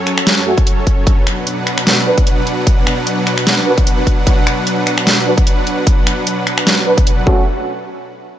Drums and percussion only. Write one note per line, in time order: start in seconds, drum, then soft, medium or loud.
0.07 finger snap medium
0.07 closed hi-hat soft
0.18 finger snap medium
0.27 snare loud
0.27 closed hi-hat medium
0.58 kick loud
0.58 closed hi-hat medium
0.67 closed hi-hat medium
0.87 kick medium
0.87 closed hi-hat soft
1.07 kick loud
1.07 closed hi-hat medium
1.27 finger snap medium
1.27 closed hi-hat soft
1.47 closed hi-hat medium
1.67 finger snap medium
1.67 closed hi-hat soft
1.78 finger snap medium
1.87 snare loud
1.87 closed hi-hat medium
2.18 kick loud
2.18 closed hi-hat medium
2.27 closed hi-hat medium
2.47 closed hi-hat soft
2.67 kick loud
2.67 closed hi-hat medium
2.87 finger snap medium
2.87 closed hi-hat medium
3.07 closed hi-hat medium
3.27 finger snap medium
3.27 closed hi-hat medium
3.38 finger snap medium
3.47 snare loud
3.47 closed hi-hat medium
3.78 kick loud
3.78 closed hi-hat medium
3.87 closed hi-hat medium
4.07 kick medium
4.07 closed hi-hat medium
4.27 kick loud
4.27 closed hi-hat medium
4.47 finger snap medium
4.47 closed hi-hat medium
4.67 closed hi-hat medium
4.87 finger snap medium
4.87 closed hi-hat medium
4.98 finger snap medium
5.07 snare loud
5.07 closed hi-hat medium
5.38 kick loud
5.38 closed hi-hat medium
5.47 closed hi-hat medium
5.67 closed hi-hat medium
5.87 kick loud
5.87 closed hi-hat medium
6.07 finger snap medium
6.07 closed hi-hat medium
6.27 closed hi-hat medium
6.47 finger snap medium
6.47 closed hi-hat medium
6.58 finger snap medium
6.67 snare loud
6.67 closed hi-hat medium
6.98 kick loud
6.98 closed hi-hat medium
7.07 closed hi-hat medium
7.27 kick loud